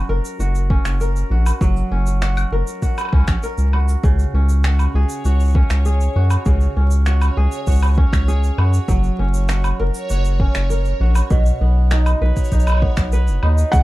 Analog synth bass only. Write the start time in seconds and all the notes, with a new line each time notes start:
0.09 F#1
0.39 F#1
0.85 F#1
1.30 A#1
1.61 F#1
1.91 F#1
2.52 F#1
3.13 C#2
3.28 A#1
3.58 C#2
4.04 C#2
4.34 C#2
4.94 C#2
5.25 C#2
5.70 C#2
6.16 F#2
6.46 C#2
6.76 C#2
7.37 C#2
7.67 C#2
8.13 C#2
8.58 F#2
8.88 F#1
9.19 F#1
9.80 F#1
10.10 F#1
10.55 F#1
11.00 A#1
11.30 B1
11.61 B1
12.21 B1
12.52 B1
12.98 B1
13.28 F#1
13.43 D#2
13.73 C#2